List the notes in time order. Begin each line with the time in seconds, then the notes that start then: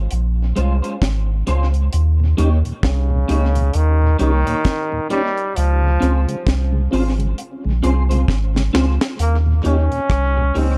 0.11 A#1, closed hi-hat
0.56 C2 G#3 C#4 F4 C5, closed hi-hat
0.82 G#3 C#4 F4 C5, closed hi-hat
1.02 G#1, kick, snare, closed hi-hat
1.47 C#2 G#3 C#4 F4 C5, closed hi-hat
1.74 closed hi-hat
1.93 D#2, closed hi-hat
2.20 D#2 A#2
2.37 D#2 A#3 C#4 D#4 G4 C#5, closed hi-hat
2.65 D#2 A#2, closed hi-hat
2.83 C2, kick, snare, closed hi-hat
2.87 C#3
3.10 D#2 A#2
3.28 C#2 A#3 C#4 D#4 G4 C#5, closed hi-hat
3.55 D#2 A#2, closed hi-hat
3.73 D#2 D#3, closed hi-hat
4.02 D#2 A#2
4.19 C2 D#3 A#3 C#4 D#4 G4 C#5, closed hi-hat
4.46 D#2 A#2 A#3 D#4 G4 C#5, closed hi-hat
4.65 kick, snare, closed hi-hat
4.92 D#2 A#2
5.10 G3 A#3 C#4 D#4 G4 C#5, closed hi-hat
5.37 closed hi-hat
5.56 C#2 F3, closed hi-hat
5.82 C#3 G#3
6.00 C#2 C4 C#4 F4 G#4 C5, closed hi-hat
6.28 C#3 G#3, closed hi-hat
6.47 C2, kick, snare, closed hi-hat
6.72 C#3 G#3
6.91 G#1 C4 C#4 F4 G#4 C5, open hi-hat
7.18 C#3 G#3, closed hi-hat
7.38 closed hi-hat
7.65 A#1 C#3 G#3
7.83 C2 C4 C#4 F4 G#4 C5, closed hi-hat
8.09 C#3 G#3 C4 F4 G#4 C5, closed hi-hat
8.28 G#1, kick, snare
8.54 C#3 G#3, snare
8.73 C#2 C4 C#4 F4 G#4 C5, snare
9.01 snare
9.19 D#2 A#3, closed hi-hat
9.46 D#2 A#2
9.63 D#2 A#3 C#4 D#4 G4 C#5, closed hi-hat
9.91 D#2 A#2, closed hi-hat
10.10 C2, kick, cross-stick, closed hi-hat
10.37 D#2 A#2, muted clean electric guitar stroke
10.55 C#2 A#3 C4 C#4 D#4 G4 C#5, open hi-hat